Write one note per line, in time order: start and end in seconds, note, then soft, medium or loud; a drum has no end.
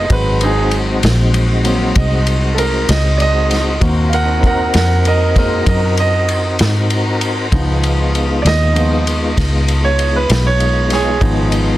0.00 0.11 D#5 medium
0.09 1.00 G#1 medium
0.09 1.63 F#3 medium
0.09 3.77 G#3 medium
0.09 3.77 C4 medium
0.09 1.63 C4 medium
0.09 3.77 D#4 medium
0.09 3.77 F#4 medium
0.09 0.42 B4 medium
0.09 kick loud
0.09 ride medium
0.41 0.71 D#4 medium
0.41 0.73 G#4 medium
0.41 ride medium
0.71 ride medium
1.03 1.93 A#1 medium
1.03 snare loud
1.03 ride medium
1.34 ride medium
1.64 1.92 F#3 medium
1.64 1.93 A#3 soft
1.64 1.93 C4 medium
1.64 ride medium
1.96 2.86 C2 medium
1.96 2.56 D#5 medium
1.96 kick medium
1.96 ride medium
2.27 ride medium
2.54 2.58 A4 medium
2.54 ride medium
2.59 2.88 A#4 medium
2.89 3.79 C#2 medium
2.89 3.19 D#5 medium
2.89 snare loud
2.89 ride medium
3.18 3.21 D5 medium
3.18 ride medium
3.22 3.81 D#5 loud
3.51 snare soft
3.51 ride medium
3.80 4.71 D#2 medium
3.80 5.35 A#3 soft
3.80 7.48 C4 medium
3.80 5.35 C4 medium
3.80 7.48 D#4 medium
3.80 7.47 F#4 soft
3.80 7.48 F#4 medium
3.80 7.48 A#4 medium
3.80 kick loud
3.80 ride medium
4.09 4.13 F5 medium
4.09 ride medium
4.14 4.42 A#4 medium
4.14 4.43 F#5 medium
4.43 4.74 A#4 medium
4.43 4.75 F#5 medium
4.43 kick medium
4.43 ride medium
4.74 5.64 F2 medium
4.74 5.04 A#4 medium
4.74 5.06 F#5 medium
4.74 snare loud
4.74 ride medium
5.05 5.35 A#4 medium
5.05 5.36 D#5 medium
5.05 ride medium
5.36 5.64 G#3 soft
5.36 5.64 A#3 soft
5.36 5.64 C4 medium
5.36 5.66 A#4 medium
5.36 5.67 D#5 medium
5.36 kick medium
5.36 ride medium
5.66 6.56 F#2 loud
5.66 5.96 A#4 medium
5.66 5.98 D#5 medium
5.66 kick medium
5.66 ride medium
5.97 7.80 D#5 medium
5.97 ride medium
6.29 ride medium
6.59 7.49 G#2 medium
6.59 snare loud
6.59 ride medium
6.90 ride medium
7.21 ride medium
7.51 8.42 C#2 medium
7.51 8.41 F3 soft
7.51 11.18 G#3 medium
7.51 11.18 B3 medium
7.51 8.41 B3 soft
7.51 11.18 D#4 medium
7.51 8.41 D#4 medium
7.51 11.18 F4 medium
7.51 kick loud
7.51 ride medium
7.83 ride medium
8.15 ride medium
8.42 9.34 D#2 medium
8.42 8.45 D5 medium
8.42 ride medium
8.47 9.80 D#5 loud
8.47 snare loud
8.74 9.02 F3 soft
8.74 9.02 B3 soft
8.74 9.02 D#4 soft
8.74 ride medium
9.07 ride medium
9.37 10.27 C#2 loud
9.37 kick medium
9.37 snare soft
9.37 ride medium
9.68 ride medium
9.84 10.14 C#5 medium
9.99 ride medium
10.16 10.45 B4 medium
10.30 11.19 B1 medium
10.30 snare loud
10.30 ride medium
10.47 10.90 C#5 medium
10.60 ride medium
10.90 11.78 G#4 medium
10.90 11.78 C#5 medium
10.90 snare soft
10.90 ride medium
11.21 11.78 G#1 medium
11.21 11.78 F3 medium
11.21 11.78 G#3 medium
11.21 11.78 B3 soft
11.21 11.78 B3 medium
11.21 11.78 D#4 medium
11.21 kick loud
11.21 ride medium
11.52 ride medium